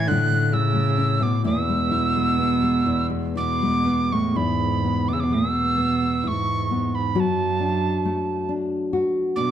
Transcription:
Already playing: nylon-string guitar A3 C#4 E4
0.07 nylon-string guitar A2, cello D3, tin whistle F#6
0.11 nylon-string guitar E4
0.32 nylon-string guitar A3
0.53 cello C#3, nylon-string guitar E4, tin whistle E6
0.75 nylon-string guitar A3
0.98 nylon-string guitar C#4
1.21 cello B2, nylon-string guitar A3, tin whistle D6
1.44 nylon-string guitar E2 E4, cello B2, tin whistle E6
1.69 nylon-string guitar G#3
1.91 nylon-string guitar E4
2.16 nylon-string guitar G#3
2.38 nylon-string guitar B3
2.62 nylon-string guitar G#3
2.86 nylon-string guitar E2 E4
3.10 nylon-string guitar G#3
3.36 cello B2, nylon-string guitar E4, tin whistle D6
3.62 nylon-string guitar G#3
3.86 nylon-string guitar B3
4.12 cello A2, nylon-string guitar G#3, tin whistle C#6
4.35 nylon-string guitar E2 E4, cello G#2, tin whistle B5
4.84 nylon-string guitar B3
5.08 cello B2, tin whistle D6
5.13 cello C#3, tin whistle E6
5.20 cello B2, tin whistle D6
5.30 cello B2, nylon-string guitar G#3, tin whistle E6
5.77 nylon-string guitar B3
6.24 nylon-string guitar E4, tin whistle C#6
6.28 cello G#2
6.71 nylon-string guitar B3
6.95 cello G#2, tin whistle B5
7.15 cello F#2, nylon-string guitar F#3 F#4
7.20 tin whistle A5
7.60 nylon-string guitar D4
8.05 nylon-string guitar A3
8.49 nylon-string guitar D4
8.93 nylon-string guitar F#4
9.36 cello B2, nylon-string guitar D4, tin whistle D6

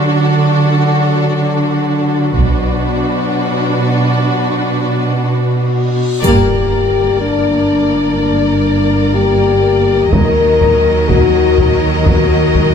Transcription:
Already playing: cello section D3, french horn section F#3 D4, viola section D4, violin section F#4 A4
2.35 double bass section B1, cello section B2, french horn section F#3 D4, viola section D4, violin section F#4 B4, taiko
4.30 reverse cymbal
5.27 french horn section F#4
6.23 double bass section G1, cello section G2, viola section A#3, french horn section G4, violin section A#4 D5, taiko, impact, triangle
7.21 french horn section D4
8.18 french horn section D4
9.15 french horn section G4
10.11 double bass section D#2, cello section D#3, viola section F#3, violin section A#4 D#5, french horn section A#4, taiko
10.61 taiko
11.09 french horn section F#4, taiko
11.58 taiko
12.05 french horn section F#4, taiko
12.55 taiko

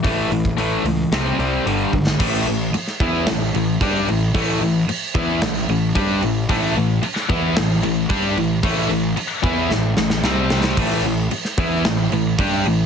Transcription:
0.04 picked electric bass A1, overdriven electric guitar A2 E3 A3, kick, open hi-hat
0.30 picked electric bass A1, overdriven electric guitar A2 E3, open hi-hat
0.45 kick
0.57 picked electric bass A1, overdriven electric guitar A2 E3 A3, open hi-hat
0.84 picked electric bass C#2, overdriven electric guitar A2 E3, open hi-hat
1.11 picked electric bass C2, overdriven electric guitar C3 G3 C4, snare, open hi-hat
1.39 picked electric bass C2, overdriven electric guitar C3 G3 C4, open hi-hat
1.65 picked electric bass G1, overdriven electric guitar G2 D3 G3, open hi-hat
1.93 picked electric bass G#1, overdriven electric guitar G2 D3, kick
2.07 snare
2.20 picked electric bass A1, overdriven electric guitar A2 E3 A3, kick, crash
2.47 picked electric bass A1, overdriven electric guitar A2 E3, crash
2.74 muted distorted electric guitar stroke, muted overdriven electric guitar stroke, muted picked electric bass stroke, crash
2.87 snare
3.00 picked electric bass E2, overdriven electric guitar E3 B3 E4, kick, crash
3.27 picked electric bass A1, overdriven electric guitar A2 E3, snare, crash
3.54 picked electric bass A1, overdriven electric guitar A2 E3, crash
3.81 picked electric bass G2, overdriven electric guitar G3 D4 G4, kick, crash
4.07 picked electric bass A1, overdriven electric guitar A2 E3, crash
4.34 picked electric bass A1, overdriven electric guitar A2 E3 A3, kick, crash
4.61 picked electric bass A1, overdriven electric guitar A2 E3, crash
4.87 muted picked electric bass stroke, muted overdriven electric guitar stroke, muted distorted electric guitar stroke, crash
5.14 picked electric bass E2, overdriven electric guitar E3 B3 E4, kick, crash
5.42 picked electric bass A1, overdriven electric guitar A2 E3, snare, crash
5.68 picked electric bass A1, overdriven electric guitar A2 E3, crash
5.95 picked electric bass G2, overdriven electric guitar G3 D4 G4, kick, crash
6.22 picked electric bass A1, overdriven electric guitar A2 E3, crash
6.49 picked electric bass A1, overdriven electric guitar A2 E3 A3, kick, crash
6.76 picked electric bass A1, overdriven electric guitar A2 E3, crash
7.02 muted distorted electric guitar stroke, muted picked electric bass stroke, muted overdriven electric guitar stroke, crash
7.16 snare
7.29 picked electric bass E2, overdriven electric guitar E3 B3 E4, kick, crash
7.57 picked electric bass A1, overdriven electric guitar A2 E3, snare, crash
7.83 picked electric bass A1, overdriven electric guitar A2 E3, crash
8.10 picked electric bass G2, overdriven electric guitar G3 D4 G4, kick, crash
8.37 picked electric bass A1, overdriven electric guitar A2 E3, crash
8.63 picked electric bass A1, overdriven electric guitar A2 E3 A3, kick, crash
8.90 picked electric bass A1, overdriven electric guitar A2 E3, crash
9.16 muted distorted electric guitar stroke, muted picked electric bass stroke, muted overdriven electric guitar stroke, crash
9.43 picked electric bass E2, overdriven electric guitar E3 B3 E4, kick, crash
9.69 picked electric bass A1, overdriven electric guitar A2 E3, snare
9.96 picked electric bass A1, overdriven electric guitar A2 E3, snare
10.10 snare
10.23 picked electric bass C2, overdriven electric guitar C3 G3 C4, snare
10.50 snare
10.64 snare
10.77 picked electric bass A1, overdriven electric guitar A2 E3 A3, kick, crash
11.04 picked electric bass A1, overdriven electric guitar A2 E3, crash
11.31 muted picked electric bass stroke, muted distorted electric guitar stroke, muted overdriven electric guitar stroke, crash
11.45 snare
11.58 picked electric bass E2, overdriven electric guitar E3 B3 E4, kick, crash
11.85 picked electric bass A1, overdriven electric guitar A2 E3, snare, crash
12.12 picked electric bass A1, overdriven electric guitar A2 E3, crash
12.38 picked electric bass G2, overdriven electric guitar G3 D4 G4, kick, crash
12.65 picked electric bass A1, overdriven electric guitar A2 E3, crash

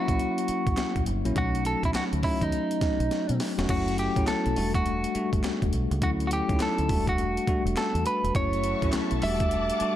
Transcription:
Already playing: tine electric piano F#3 A#3 C#4 E4, clean electric guitar F#4
0.08 fingered electric bass A#1, kick, closed hi-hat
0.19 closed hi-hat
0.38 closed hi-hat
0.48 muted fingered electric bass stroke, closed hi-hat
0.67 fingered electric bass A1, kick, closed hi-hat
0.77 snare, clap, closed hi-hat
0.96 fingered electric bass A#1, kick, closed hi-hat
1.06 fingered electric bass G1, closed hi-hat
1.25 fingered electric bass A#1, tine electric piano F#3 A#3 C#4 E4, closed hi-hat
1.36 fingered electric bass B1, tine electric piano F#3 A3 C#4 D#4, clean electric guitar F#4, kick, closed hi-hat
1.55 closed hi-hat
1.65 clean electric guitar A4, closed hi-hat
1.83 fingered electric bass B1, clean electric guitar E4, kick, closed hi-hat
1.94 clean electric guitar F#4, muted fingered electric bass stroke, snare, clap, closed hi-hat
2.13 fingered electric bass D2, closed hi-hat
2.23 tine electric piano F#3 A3 C#4 D#4, clean electric guitar E4, kick, open hi-hat
2.41 fingered electric bass D#2, clean electric guitar D#4, kick, closed hi-hat
2.52 closed hi-hat
2.71 closed hi-hat
2.81 muted fingered electric bass stroke, kick, snare, closed hi-hat
3.00 fingered electric bass B1, closed hi-hat
3.11 snare, closed hi-hat
3.29 fingered electric bass B2, closed hi-hat
3.40 snare, open hi-hat
3.58 fingered electric bass E1, tine electric piano F#3 A3 C#4 F#4, snare, closed hi-hat
3.69 fingered electric bass F#1, tine electric piano F#3 A3 C#4 E4, clean electric guitar F#4, kick, closed hi-hat, crash
3.88 closed hi-hat
3.98 clean electric guitar G4, closed hi-hat
4.16 fingered electric bass A1, tine electric piano F#3 A3 C#4 E4, kick, closed hi-hat
4.27 clean electric guitar A4, muted fingered electric bass stroke, snare, clap, closed hi-hat
4.46 fingered electric bass B1, closed hi-hat
4.56 fingered electric bass E1, tine electric piano G3 A3 D4 F#4, open hi-hat
4.75 clean electric guitar F#4, kick, closed hi-hat
4.86 closed hi-hat
5.04 closed hi-hat
5.15 tine electric piano G3 A3 D4 F#4, muted fingered electric bass stroke, closed hi-hat
5.33 fingered electric bass G1, kick, closed hi-hat
5.44 snare, clap, closed hi-hat
5.62 fingered electric bass E1, kick, closed hi-hat
5.73 fingered electric bass B1, closed hi-hat
5.91 fingered electric bass C#2, closed hi-hat
6.01 fingered electric bass D2, tine electric piano F#3 A3 C#4 E4, clean electric guitar F#4, kick, closed hi-hat
6.20 closed hi-hat
6.27 clean electric guitar F#4, closed hi-hat
6.33 clean electric guitar G4
6.48 fingered electric bass C#2, tine electric piano F#3 A3 C#4 D#4, kick, closed hi-hat
6.56 tine electric piano E4, snare, clap, closed hi-hat
6.62 clean electric guitar A4
6.78 fingered electric bass D2, closed hi-hat
6.89 fingered electric bass E1, tine electric piano G3 A3 D4 F#4, kick, open hi-hat
7.07 clean electric guitar F#4, kick, closed hi-hat
7.18 closed hi-hat
7.37 closed hi-hat
7.47 tine electric piano G3 A3 D4 F#4, muted fingered electric bass stroke, kick, closed hi-hat
7.65 fingered electric bass E1, closed hi-hat
7.77 clean electric guitar A4, snare, clap, closed hi-hat
7.95 fingered electric bass E2, closed hi-hat
8.06 clean electric guitar B4, closed hi-hat
8.24 fingered electric bass E1, closed hi-hat
8.35 fingered electric bass F#1, tine electric piano F#3 A3 C#4 E4, string section F#4 E5 A5 C#6, clean electric guitar C#5, kick, closed hi-hat
8.53 closed hi-hat
8.64 closed hi-hat
8.82 fingered electric bass A1, tine electric piano F#3 A3 C#4 E4, kick, closed hi-hat
8.92 muted fingered electric bass stroke, snare, clap, closed hi-hat
9.11 fingered electric bass B1, closed hi-hat
9.22 fingered electric bass E1, tine electric piano G3 A3 D4 F#4, string section G3 F#5 D6, clean electric guitar E5, open hi-hat
9.40 kick, closed hi-hat
9.51 closed hi-hat
9.70 closed hi-hat
9.80 tine electric piano G3 A3 D4 F#4, muted fingered electric bass stroke, closed hi-hat

